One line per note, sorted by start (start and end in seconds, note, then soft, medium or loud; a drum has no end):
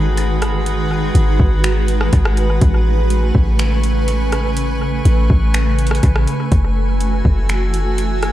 0.00 1.11 G#1 loud
0.00 2.57 D#3 medium
0.00 2.58 G#3 medium
0.00 2.57 F#4 medium
0.00 2.58 G#4 medium
0.00 6.48 B4 medium
0.00 2.58 F#5 medium
0.00 2.58 B5 medium
0.17 closed hi-hat medium
0.42 cross-stick loud
0.42 closed hi-hat medium
0.66 closed hi-hat medium
1.15 1.38 G#1 loud
1.15 closed hi-hat medium
1.40 2.10 G#1 loud
1.40 kick medium
1.64 finger snap loud
1.64 closed hi-hat medium
1.88 closed hi-hat medium
2.01 cross-stick medium
2.13 2.60 G#1 loud
2.13 kick medium
2.13 closed hi-hat medium
2.25 cross-stick loud
2.37 closed hi-hat medium
2.61 3.32 A1 loud
2.61 6.48 C#3 medium
2.61 8.32 A3 medium
2.61 6.48 B4 medium
2.61 8.32 G#5 medium
2.61 6.48 C#6 medium
2.61 kick loud
2.61 closed hi-hat medium
3.10 closed hi-hat medium
3.35 5.01 A1 loud
3.35 kick medium
3.59 finger snap loud
3.59 closed hi-hat medium
3.83 closed hi-hat medium
4.08 closed hi-hat medium
4.32 cross-stick medium
4.32 closed hi-hat medium
4.57 closed hi-hat medium
5.05 5.29 A1 loud
5.05 closed hi-hat medium
5.30 6.00 A1 loud
5.30 kick medium
5.54 finger snap loud
5.54 closed hi-hat medium
5.79 closed hi-hat medium
5.87 closed hi-hat medium
5.91 cross-stick medium
5.91 closed hi-hat medium
6.03 6.26 A1 loud
6.03 kick loud
6.03 closed hi-hat medium
6.16 cross-stick loud
6.27 closed hi-hat medium
6.52 7.22 F#1 loud
6.52 8.32 E3 medium
6.52 8.32 F#4 medium
6.52 8.32 A4 medium
6.52 8.32 E6 medium
6.52 kick loud
6.52 closed hi-hat medium
7.00 closed hi-hat medium
7.25 8.32 F#1 loud
7.25 kick medium
7.49 finger snap loud
7.49 closed hi-hat medium
7.74 closed hi-hat medium
7.98 closed hi-hat medium
8.23 cross-stick medium
8.23 closed hi-hat medium